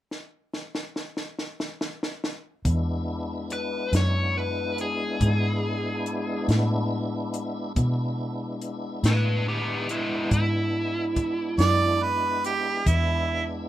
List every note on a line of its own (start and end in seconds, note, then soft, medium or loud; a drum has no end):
0.11 snare medium
0.54 snare medium
0.75 snare medium
0.96 snare medium
1.17 snare medium
1.39 snare medium
1.60 snare medium
1.81 snare medium
2.03 snare medium
2.24 snare medium
2.65 3.89 E2 medium
2.65 7.72 G#3 medium
2.65 7.73 B3 medium
2.65 7.73 D4 medium
2.65 7.72 E4 medium
2.65 kick medium
2.65 closed hi-hat medium
3.50 3.93 B4 medium
3.50 closed hi-hat medium
3.93 5.17 F#2 medium
3.93 4.36 C#5 medium
3.93 snare medium
3.93 closed hi-hat medium
4.38 4.78 B4 medium
4.78 6.46 G#4 medium
4.78 closed hi-hat medium
5.21 6.45 G#2 medium
5.21 kick medium
5.21 closed hi-hat medium
6.06 closed hi-hat medium
6.48 7.72 A2 medium
6.48 snare medium
6.48 closed hi-hat medium
7.34 closed hi-hat medium
7.76 9.00 B2 medium
7.76 12.83 G#3 medium
7.76 12.83 B3 medium
7.76 12.83 D4 medium
7.76 12.83 E4 medium
7.76 kick loud
7.76 closed hi-hat medium
8.61 closed hi-hat medium
9.03 10.27 A2 medium
9.03 9.47 D4 medium
9.03 9.47 B4 medium
9.03 snare medium
9.03 closed hi-hat medium
9.48 9.87 B3 medium
9.48 9.89 G4 medium
9.89 10.29 G#3 medium
9.89 10.31 E4 medium
9.89 closed hi-hat medium
10.31 11.55 G#2 medium
10.31 11.99 E4 medium
10.31 kick loud
10.31 closed hi-hat medium
11.16 kick medium
11.16 closed hi-hat medium
11.58 12.82 F#2 medium
11.58 12.04 D5 medium
11.58 snare medium
11.58 closed hi-hat medium
12.03 12.43 B4 medium
12.44 12.89 G4 medium
12.44 closed hi-hat medium
12.86 13.69 E2 medium
12.86 13.69 G#3 medium
12.86 13.69 B3 medium
12.86 13.69 D4 medium
12.86 13.69 E4 medium
12.86 13.49 E4 medium
12.86 kick medium
12.86 closed hi-hat medium